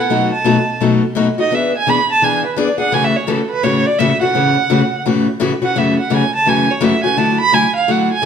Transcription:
0.00 0.30 F#5 medium
0.10 0.30 B2 medium
0.10 0.30 F#3 medium
0.10 0.30 A3 medium
0.10 0.31 D#4 medium
0.10 0.31 F#4 medium
0.33 0.78 A5 medium
0.44 0.55 B2 medium
0.44 0.56 F#3 medium
0.44 0.56 A3 medium
0.44 0.56 D#4 medium
0.44 0.56 F#4 medium
0.81 1.01 B2 medium
0.81 1.01 F#3 medium
0.81 1.01 A3 medium
0.81 1.01 D#4 medium
0.81 1.02 F#4 medium
1.15 1.26 B2 medium
1.15 1.26 F#3 medium
1.15 1.27 A3 medium
1.15 1.27 D#4 medium
1.15 1.27 F#4 medium
1.38 1.51 A3 soft
1.38 1.51 D#4 medium
1.38 1.51 F#4 medium
1.38 1.56 D#5 medium
1.51 1.72 E3 medium
1.51 1.72 B3 medium
1.51 1.72 D4 medium
1.51 1.72 G#4 medium
1.51 1.74 E5 medium
1.77 1.91 G#5 loud
1.87 1.97 E3 medium
1.87 1.98 B3 medium
1.87 1.98 D4 medium
1.87 1.98 G#4 medium
1.87 2.09 B5 loud
2.12 2.26 A5 loud
2.22 2.43 E3 medium
2.22 2.43 B3 medium
2.22 2.43 D4 medium
2.22 2.44 G#4 medium
2.22 2.44 G#5 medium
2.46 2.60 B4 soft
2.56 2.68 E3 medium
2.56 2.68 B3 medium
2.56 2.68 D4 loud
2.56 2.68 G#4 medium
2.56 2.79 D5 medium
2.78 2.92 B3 soft
2.78 2.92 D4 medium
2.78 2.91 G#4 medium
2.78 2.95 F#5 medium
2.91 3.12 A2 medium
2.91 3.13 C#3 medium
2.91 3.13 E3 medium
2.91 3.13 A3 medium
2.91 3.13 C#4 medium
2.91 3.13 F#4 medium
2.91 3.06 G#5 medium
3.04 3.18 E5 medium
3.16 3.30 C#5 medium
3.27 3.38 A2 medium
3.27 3.39 C#3 medium
3.27 3.39 E3 medium
3.27 3.39 A3 medium
3.27 3.39 C#4 medium
3.27 3.39 F#4 loud
3.27 3.50 A4 medium
3.50 3.65 B4 loud
3.63 3.84 A2 medium
3.63 3.84 C#3 medium
3.63 3.84 E3 medium
3.63 3.84 A3 medium
3.63 3.84 C#4 medium
3.63 3.84 F#4 medium
3.63 3.88 C#5 medium
3.86 4.00 D5 medium
3.99 4.10 A2 medium
3.99 4.10 C#3 loud
3.99 4.10 E3 loud
3.99 4.10 A3 loud
3.99 4.10 C#4 medium
3.99 4.10 F#4 loud
3.99 4.20 E5 medium
4.21 4.34 E3 soft
4.21 4.34 A3 medium
4.21 4.34 C#4 medium
4.21 4.34 F#4 medium
4.21 5.01 F#5 loud
4.35 4.55 A2 medium
4.35 4.55 C#3 medium
4.35 4.55 E3 medium
4.35 4.56 A3 medium
4.35 4.56 C#4 medium
4.35 4.56 F#4 medium
4.70 4.80 A2 medium
4.70 4.81 C#3 medium
4.70 4.80 E3 medium
4.70 4.81 A3 medium
4.70 4.81 C#4 medium
4.70 4.81 F#4 medium
5.06 5.26 A2 medium
5.06 5.26 C#3 medium
5.06 5.26 E3 medium
5.06 5.26 A3 medium
5.06 5.26 C#4 medium
5.06 5.26 F#4 medium
5.40 5.51 A2 medium
5.40 5.51 C#3 medium
5.40 5.51 E3 medium
5.40 5.51 A3 medium
5.40 5.52 C#4 medium
5.40 5.51 F#4 medium
5.62 5.75 E3 soft
5.62 5.75 A3 soft
5.62 5.75 C#4 medium
5.62 5.75 F#4 medium
5.62 5.79 F#5 medium
5.75 5.96 F#2 medium
5.75 5.96 C#3 medium
5.75 5.96 E3 medium
5.75 5.96 A3 medium
5.75 5.96 C#4 medium
5.75 5.97 F#4 medium
5.75 5.98 E5 medium
5.99 6.16 F#5 medium
6.10 6.21 F#2 medium
6.10 6.22 C#3 medium
6.10 6.22 E3 medium
6.10 6.22 A3 medium
6.10 6.22 C#4 medium
6.10 6.22 F#4 medium
6.14 6.34 G#5 medium
6.35 6.50 A5 loud
6.46 6.67 F#2 medium
6.46 6.67 C#3 medium
6.46 6.67 E3 medium
6.46 6.67 A3 medium
6.46 6.67 C#4 medium
6.46 6.67 F#4 medium
6.46 6.72 G#5 medium
6.71 6.85 C#5 medium
6.81 6.92 F#2 medium
6.81 6.92 C#3 medium
6.81 6.92 E3 medium
6.81 6.93 A3 medium
6.81 6.93 C#4 medium
6.81 6.93 F#4 medium
6.81 7.03 E5 medium
7.03 7.17 E3 soft
7.03 7.16 A3 soft
7.03 7.17 C#4 soft
7.03 7.17 F#4 medium
7.03 7.19 G#5 medium
7.17 7.38 D3 medium
7.17 7.38 F#3 medium
7.17 7.38 A3 medium
7.17 7.38 E4 medium
7.17 7.38 F#4 medium
7.17 7.39 A5 medium
7.40 7.55 B5 loud
7.52 7.63 D3 medium
7.52 7.64 F#3 medium
7.52 7.64 A3 medium
7.52 7.64 E4 medium
7.52 7.64 F#4 medium
7.52 7.75 G#5 medium
7.76 7.92 F5 medium
7.88 8.09 D3 medium
7.88 8.09 F#3 medium
7.88 8.09 A3 medium
7.88 8.09 E4 medium
7.88 8.09 F#4 medium
7.88 8.11 F#5 medium
8.12 8.25 G#5 loud
8.22 8.25 D3 medium

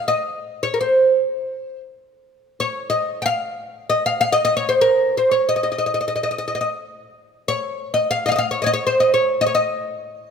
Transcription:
0.08 0.63 D#5 medium
0.63 0.73 C#5 medium
0.74 0.80 A#4 medium
0.81 1.80 C5 medium
2.60 2.89 C#5 medium
2.90 3.21 D#5 medium
3.22 3.89 F5 medium
3.22 3.25 G5 medium
3.90 4.06 D#5 medium
4.06 4.20 F5 medium
4.21 4.32 F5 medium
4.32 4.43 D#5 medium
4.45 4.56 D#5 medium
4.57 4.69 C#5 medium
4.69 4.81 C5 medium
4.81 5.17 A#4 medium
5.17 5.33 C5 medium
5.31 5.48 C#5 medium
5.49 5.55 D#5 medium
5.56 5.62 D#5 soft
5.63 5.71 D#5 soft
5.72 5.77 D#5 soft
5.78 5.85 D#5 medium
5.86 5.93 D#5 soft
5.94 5.99 D#5 soft
6.01 6.07 D#5 soft
6.08 6.14 D#5 medium
6.16 6.22 D#5 soft
6.23 6.30 D#5 medium
6.31 6.37 D#5 soft
6.38 6.46 D#5 medium
6.48 6.54 D#5 soft
6.55 6.60 D#5 soft
6.61 6.69 D#5 soft
7.48 7.93 C#5 medium
7.94 8.10 D#5 medium
8.11 8.25 F5 medium
8.26 8.28 D#5 medium
8.26 8.31 F5 medium
8.32 8.35 D#5 medium
8.36 8.38 D#5 medium
8.36 8.49 F5 medium
8.51 8.60 C#5 medium
8.62 8.66 C#5 medium
8.62 8.64 D#5 medium
8.66 8.72 D#5 medium
8.74 8.85 C#5 medium
8.87 9.00 C5 medium
9.00 9.13 D#5 medium
9.14 9.41 C#5 medium
9.41 9.46 D#5 medium
9.46 9.54 C#5 medium
9.55 10.31 D#5 medium

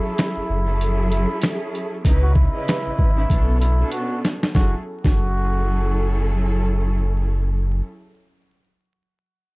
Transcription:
0.00 0.56 F#3 medium
0.00 0.57 C#4 medium
0.00 0.57 E4 medium
0.00 1.08 E4 medium
0.00 0.57 G#4 medium
0.00 0.58 A4 loud
0.18 snare loud
0.18 closed hi-hat medium
0.36 0.41 F#1 soft
0.49 1.26 F#1 loud
0.64 1.94 F#3 loud
0.64 1.95 C#4 medium
0.64 1.95 E4 medium
0.64 1.95 G#4 loud
0.64 1.96 A4 loud
0.81 closed hi-hat medium
1.10 1.39 E4 medium
1.10 closed hi-hat medium
1.42 snare loud
1.42 snare medium
1.42 closed hi-hat medium
1.75 closed hi-hat medium
2.04 2.48 C#2 loud
2.04 2.50 C#3 medium
2.04 2.50 C#4 medium
2.04 2.50 D#4 medium
2.04 2.51 E4 medium
2.04 2.51 B4 loud
2.04 kick loud
2.04 closed hi-hat loud
2.23 2.34 F#4 medium
2.35 3.56 E4 medium
2.35 kick medium
2.53 3.10 C#3 loud
2.53 3.11 C#4 medium
2.53 3.11 E4 medium
2.53 3.12 B4 loud
2.53 3.11 D#5 medium
2.68 snare loud
2.68 snare medium
2.68 closed hi-hat medium
2.86 2.91 G#1 soft
2.99 3.25 G#1 medium
2.99 kick medium
3.16 3.29 C#3 medium
3.16 3.29 C#4 medium
3.16 3.30 D#4 medium
3.16 3.30 E4 medium
3.16 3.30 B4 medium
3.29 3.84 B1 loud
3.29 3.75 B2 medium
3.29 3.75 B3 medium
3.29 3.75 C#4 medium
3.29 3.76 D4 medium
3.29 3.76 A4 loud
3.29 kick loud
3.29 closed hi-hat medium
3.60 3.89 E4 medium
3.60 closed hi-hat medium
3.78 4.35 B2 loud
3.78 4.36 B3 medium
3.78 4.36 C#4 medium
3.78 4.36 D4 medium
3.78 4.36 A4 loud
3.92 4.20 F#4 medium
3.92 closed hi-hat medium
4.25 snare medium
4.25 closed hi-hat medium
4.43 snare medium
4.54 4.75 F#1 loud
4.54 4.74 F#3 medium
4.54 4.74 C#4 medium
4.54 4.74 E4 medium
4.54 4.74 F#4 medium
4.54 4.74 G#4 medium
4.54 4.75 A4 medium
4.54 kick loud
4.54 snare medium
5.04 7.81 F#1 loud
5.04 7.81 F#3 medium
5.04 7.81 C#4 medium
5.04 7.81 E4 medium
5.04 6.38 F#4 loud
5.04 7.81 G#4 medium
5.04 7.81 A4 loud
5.04 kick loud
5.04 snare medium

